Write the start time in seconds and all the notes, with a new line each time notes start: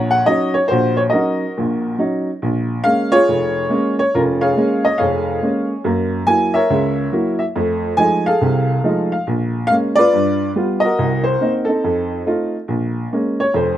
Already playing: A#1 C#5
0.11 F#5
0.26 F#3 C#4 D#4 D#5
0.54 C#5
0.68 A#1 F#4 C5
0.97 C#5
1.10 F#4 A#4 D#5
1.14 F#3 C#4 D#4
1.57 A#1 A#2
1.98 F#3 C#4 D#4
2.42 A#1
2.84 G#3 A#3 C#4 F5
3.12 F4 G#4 C#5
3.28 F1
3.70 G#3 A#3 C#4
3.99 C#5
4.14 F1 C#4 F4 A#4
4.41 G#4 C#5 F5
4.57 G#3 A#3 C#4
4.85 D#5
4.98 F1 F2 G#4 C#5 F5
5.42 G#3 A#3 C#4
5.84 F#2 A#3
6.27 F#3 A#3 E4 G#5
6.54 A#4 C#5 E5
6.70 C#2 C#3
7.13 F#3 A#3 E4
7.39 E5
7.56 F2 A3
7.97 F3 G#3 A3 D#4 G#5
8.26 G#4 A4 F5
8.41 C2 C3
8.84 F3 G#3 A3 D#4
9.12 F5
9.27 A#1
9.67 G#3 A#3 C#4 F5
9.96 F4 B4 D5
10.13 G2
10.56 G3 B3 F4
10.80 D#5
10.85 F#4 A#4
10.99 C2
11.24 C5
11.41 A#3 C4 D#4
11.65 C4 D#4 A4
11.84 F2
12.26 A3 D#4 F4
12.68 A#1
13.12 G#3 A#3 C#4
13.40 C#5
13.54 F1 F2 C5